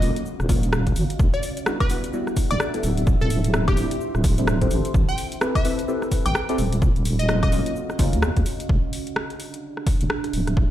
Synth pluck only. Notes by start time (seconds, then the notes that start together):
Already playing: D#5
1.34 D5
1.80 B4
2.51 D5
3.21 A4
3.68 G4
5.09 G5
5.56 E5
6.26 G5
7.19 D#5
7.28 D#5
7.43 D#5